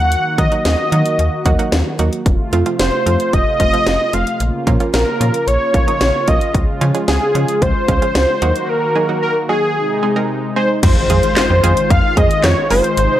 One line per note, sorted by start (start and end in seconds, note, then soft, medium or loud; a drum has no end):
0.00 0.16 D#2 loud
0.00 2.24 D#3 medium
0.00 0.28 F#3 medium
0.00 0.28 A#3 medium
0.00 2.24 A#3 medium
0.00 0.28 D#4 medium
0.00 0.28 F#4 medium
0.00 2.24 F#4 medium
0.00 0.38 F#5 loud
0.12 closed hi-hat medium
0.38 0.49 D#3 loud
0.38 0.49 F#3 medium
0.38 0.49 A#3 medium
0.38 0.49 D#4 medium
0.38 0.49 F#4 medium
0.38 0.63 D#5 medium
0.38 kick medium
0.38 closed hi-hat medium
0.52 0.73 F#3 medium
0.52 0.72 A#3 medium
0.52 0.72 D#4 medium
0.52 0.72 F#4 medium
0.52 closed hi-hat soft
0.65 0.76 D#2 loud
0.65 1.68 D#5 medium
0.65 snare loud
0.65 closed hi-hat medium
0.92 1.02 D#3 loud
0.92 1.13 F#3 medium
0.92 1.13 A#3 medium
0.92 1.13 D#4 medium
0.92 1.13 F#4 medium
0.92 closed hi-hat medium
1.06 closed hi-hat medium
1.19 1.29 D#2 loud
1.19 closed hi-hat medium
1.46 1.56 D#2 loud
1.46 1.56 F#3 medium
1.46 1.56 A#3 medium
1.46 1.56 D#4 medium
1.46 1.56 F#4 loud
1.46 kick medium
1.46 closed hi-hat medium
1.59 1.80 F#3 medium
1.59 1.80 A#3 medium
1.59 1.80 D#4 medium
1.59 1.80 F#4 medium
1.59 closed hi-hat medium
1.72 1.83 D#2 loud
1.72 snare loud
1.72 closed hi-hat medium
1.99 2.10 D#2 loud
1.99 2.20 F#3 medium
1.99 2.20 A#3 medium
1.99 2.20 D#4 medium
1.99 2.20 F#4 loud
1.99 closed hi-hat medium
2.13 closed hi-hat soft
2.26 2.36 F1 loud
2.26 4.38 C3 medium
2.26 4.38 A3 medium
2.26 4.38 F4 medium
2.26 kick loud
2.26 closed hi-hat medium
2.53 2.63 F2 loud
2.53 2.63 F3 medium
2.53 2.63 A3 medium
2.53 2.63 C4 medium
2.53 2.63 F4 loud
2.53 closed hi-hat medium
2.66 2.87 F3 medium
2.66 2.87 A3 medium
2.66 2.87 C4 medium
2.66 2.87 F4 medium
2.66 closed hi-hat soft
2.79 2.90 F1 loud
2.79 3.35 C5 medium
2.79 snare loud
2.79 closed hi-hat medium
3.06 3.17 F2 loud
3.06 3.27 F3 medium
3.06 3.27 A3 medium
3.06 3.27 C4 medium
3.06 3.27 F4 medium
3.06 closed hi-hat medium
3.20 closed hi-hat medium
3.33 3.44 F1 loud
3.33 3.59 D#5 medium
3.33 kick medium
3.33 closed hi-hat medium
3.60 3.70 F1 loud
3.60 3.70 F3 medium
3.60 3.70 A3 medium
3.60 3.70 C4 medium
3.60 3.70 F4 medium
3.60 4.15 D#5 loud
3.60 kick medium
3.60 closed hi-hat medium
3.73 3.94 F3 medium
3.73 3.94 A3 medium
3.73 3.94 C4 medium
3.73 3.94 F4 medium
3.73 closed hi-hat medium
3.87 3.97 F1 loud
3.87 snare loud
3.87 closed hi-hat medium
4.13 4.24 F1 loud
4.13 4.34 F3 medium
4.13 4.34 A3 medium
4.13 4.34 C4 medium
4.13 4.34 F4 medium
4.13 4.40 F5 loud
4.13 closed hi-hat medium
4.27 closed hi-hat soft
4.40 4.51 A#1 loud
4.40 8.38 C#3 medium
4.40 6.52 A#3 medium
4.40 8.38 F4 medium
4.40 closed hi-hat medium
4.67 4.77 A#2 loud
4.67 4.77 F3 medium
4.67 4.77 A#3 medium
4.67 4.77 C#4 medium
4.67 4.77 F4 loud
4.67 kick medium
4.67 closed hi-hat medium
4.80 5.01 F3 medium
4.80 5.01 A#3 medium
4.80 5.01 C#4 medium
4.80 5.01 F4 medium
4.80 closed hi-hat soft
4.94 5.04 A#1 loud
4.94 5.49 A#4 medium
4.94 snare loud
4.94 closed hi-hat medium
5.21 5.31 A#2 medium
5.21 5.41 F3 medium
5.21 5.41 A#3 medium
5.21 5.41 C#4 medium
5.21 5.41 F4 medium
5.21 closed hi-hat medium
5.34 closed hi-hat medium
5.47 5.58 A#1 medium
5.47 5.73 C#5 medium
5.47 closed hi-hat medium
5.74 5.85 A#1 medium
5.74 5.85 F3 medium
5.74 5.85 A#3 medium
5.74 5.85 C#4 medium
5.74 5.85 F4 medium
5.74 6.29 C#5 loud
5.74 kick medium
5.74 closed hi-hat medium
5.88 6.08 F3 medium
5.88 6.08 A#3 medium
5.88 6.08 C#4 medium
5.88 6.08 D#4 medium
5.88 closed hi-hat medium
6.01 6.11 A#1 loud
6.01 snare loud
6.01 closed hi-hat medium
6.28 6.38 A#1 medium
6.28 6.48 F3 medium
6.28 6.48 A#3 medium
6.28 6.48 C#4 medium
6.28 6.48 F4 medium
6.28 6.55 D#5 loud
6.28 kick medium
6.28 closed hi-hat medium
6.41 closed hi-hat soft
6.55 6.65 C#2 loud
6.55 8.40 G#3 medium
6.55 kick loud
6.55 closed hi-hat medium
6.81 6.92 C#3 loud
6.81 6.92 F3 medium
6.81 6.92 G#3 medium
6.81 6.92 C#4 medium
6.81 6.92 F4 loud
6.81 closed hi-hat medium
6.95 7.15 F3 medium
6.95 7.15 G#3 medium
6.95 7.15 C#4 medium
6.95 7.15 G#4 medium
6.95 closed hi-hat soft
7.08 7.19 C#2 loud
7.08 7.63 G#4 loud
7.08 snare loud
7.08 closed hi-hat medium
7.35 7.45 C#3 loud
7.35 7.55 F3 medium
7.35 7.55 G#3 medium
7.35 7.55 C#4 medium
7.35 7.55 F4 medium
7.35 closed hi-hat medium
7.48 closed hi-hat medium
7.62 7.72 C#2 loud
7.62 8.70 C5 loud
7.62 kick medium
7.62 closed hi-hat medium
7.88 7.99 C#2 loud
7.88 7.99 F3 medium
7.88 7.99 G#3 medium
7.88 7.99 C#4 medium
7.88 7.99 F4 medium
7.88 kick loud
7.88 closed hi-hat medium
8.02 8.22 F3 medium
8.02 8.22 G#3 medium
8.02 8.22 C#4 medium
8.02 8.22 F4 medium
8.02 closed hi-hat medium
8.15 8.26 C#2 loud
8.15 snare loud
8.15 closed hi-hat medium
8.42 8.52 D#2 loud
8.42 9.75 D#3 medium
8.42 8.85 F#3 medium
8.42 9.75 A#3 medium
8.42 8.85 A#3 medium
8.42 8.85 D#4 medium
8.42 9.75 F#4 medium
8.42 8.85 F#4 loud
8.42 closed hi-hat medium
8.56 closed hi-hat soft
8.69 9.22 A#4 loud
8.96 9.06 F#3 medium
8.96 9.06 A#3 medium
8.96 9.06 D#4 medium
8.96 9.06 G#4 medium
9.09 9.30 F#3 medium
9.09 9.30 A#3 medium
9.09 9.30 D#4 medium
9.09 9.30 F#4 medium
9.22 9.35 A#4 medium
9.49 9.70 F#3 medium
9.49 9.70 A#3 medium
9.49 9.70 D#4 medium
9.49 9.70 F#4 medium
9.49 10.26 G#4 medium
9.76 10.82 C3 medium
9.76 10.82 G#3 medium
9.76 10.82 D#4 medium
10.03 10.13 G#3 medium
10.03 10.13 C4 medium
10.03 10.13 D#4 medium
10.03 10.13 G#4 medium
10.16 10.37 G#3 medium
10.16 10.37 C4 medium
10.16 10.37 D#4 medium
10.16 10.37 A#4 medium
10.56 10.77 G#3 medium
10.56 10.77 C4 medium
10.56 10.77 D#4 medium
10.56 10.77 G#4 medium
10.56 10.68 C5 medium
10.83 10.93 F2 loud
10.83 12.95 D#3 medium
10.83 13.20 G#3 medium
10.83 12.95 F4 medium
10.83 11.92 C5 loud
10.83 kick loud
10.83 closed hi-hat medium
10.83 crash loud
10.83 impact medium
11.10 11.20 F2 loud
11.10 11.30 G#3 medium
11.10 11.30 C4 medium
11.10 11.30 F4 medium
11.10 11.30 G#4 medium
11.10 closed hi-hat medium
11.23 closed hi-hat soft
11.37 snare loud
11.37 clap medium
11.37 closed hi-hat medium
11.50 11.60 F2 loud
11.63 11.74 F2 loud
11.63 11.84 G#3 loud
11.63 11.84 C4 medium
11.63 11.84 F4 medium
11.63 11.84 G#4 loud
11.63 closed hi-hat medium
11.77 closed hi-hat medium
11.90 12.01 F2 loud
11.90 12.18 F5 loud
11.90 kick medium
11.90 closed hi-hat medium
12.17 12.27 F2 loud
12.17 12.38 G#3 medium
12.17 12.38 C4 medium
12.17 12.38 F4 medium
12.17 12.38 G#4 medium
12.17 12.45 D#5 loud
12.17 kick loud
12.17 closed hi-hat medium
12.31 closed hi-hat medium
12.44 12.54 F2 loud
12.44 12.70 C#5 loud
12.44 snare loud
12.44 clap medium
12.44 closed hi-hat medium
12.70 12.81 F#1 medium
12.70 12.91 G#3 medium
12.70 12.91 C4 medium
12.70 12.91 F4 medium
12.70 12.91 G#4 medium
12.70 13.20 C5 loud
12.70 open hi-hat medium
12.84 closed hi-hat soft
12.97 13.08 G#1 loud
12.97 13.20 C3 medium
12.97 13.20 D#4 medium
12.97 closed hi-hat medium